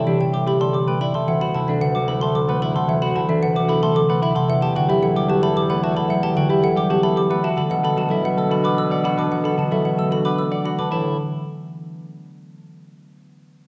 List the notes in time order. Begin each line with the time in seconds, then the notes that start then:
Already playing: A2 C3 D3 G3 A3 B3 E4 E5 A5
0.07 E3 D4 G4 E5
0.20 D3 A4 G5
0.33 G3 G4 D6
0.47 B3 E4 G4 B5
0.59 A3 A4 D5 C6
0.73 G3 G4 D6
0.86 A3 B4 G5
1.00 B3 E4 D5 B5
1.14 C3 A4 E5 C6
1.27 D2 E3 E5 F#5
1.40 B3 F#4 B5
1.54 C3 E4 F#5 A5
1.67 E3 D4 A4 E5
1.80 D3 B4 F#5
1.93 F#3 F#4 D6
2.07 B3 E4 A4 B5
2.21 A3 A4 E5 C6
2.34 F#3 A4 D6
2.47 A3 B4 F#5
2.61 B3 E4 E5 B5
2.74 C3 A4 F#5 C6
2.88 E3 E5 F#5
3.01 B3 F#4 B5
3.15 C3 E4 F#5 A5
3.28 E3 D4 A4 E5
3.42 D3 B4 F#5
3.55 F#3 F#4 D6
3.68 B3 E4 A4 B5
3.81 A3 A4 E5 C6
3.95 F#3 A4 D6
4.09 A3 B4 F#5
4.22 E4 E5 B5
4.35 C3 A4 F#5 C6
4.48 E2 F#3 E5 F#5
4.62 B3 G4 A5
4.75 D3 F#4 F#5 G5
4.89 F#3 E4 G4 E5
5.02 E3 A4 F#5
5.16 G3 G4 D6
5.28 B3 F#4 G4 A5
5.42 A3 A4 E5 B5
5.56 G3 G4 D6
5.69 A3 B4 F#5
5.83 B3 F#4 E5 A5
5.96 D3 A4 F#5 B5
6.08 F#3 E5 F#5
6.23 B3 G4 A5
6.35 D3 F#4 F#5 G5
6.49 F#3 E4 G4 E5
6.63 E3 A4 F#5
6.76 G3 G4 D6
6.90 B3 F#4 G4 A5
7.03 A3 A4 E5 B5
7.16 G3 G4 D6
7.30 A3 B4 F#5
7.43 B3 F#4 E5 A5
7.56 D3 A4 F#5 B5
7.70 B2 F#3 F#5
7.84 D4 A4 B5
7.96 D3 F#4 A5
8.09 F#3 E4 A4 E5
8.23 E3 B4 F#5
8.36 A3 A4 E6
8.50 D4 F#4 A4 B5
8.62 B3 B4 F#5 D6
8.77 A3 A4 E6
8.90 B3 D5 F#5
9.04 D4 F#4 F#5 B5
9.17 D3 B4 A5 D6
9.31 F#3 F#5
9.44 D4 A4 B5
9.58 D3 F#4 A5
9.71 F#3 E4 A4 E5
9.84 E3 B4 F#5
9.98 A3 A4 E6
10.11 D4 F#4 A4 B5
10.25 B3 B4 F#5 D6
10.38 A3 A4 E6
10.51 B3 D5 F#5
10.64 D4 F#4 F#5 B5
10.78 D3 B4 A5 D6
10.91 A2 E3 E4 B4 A5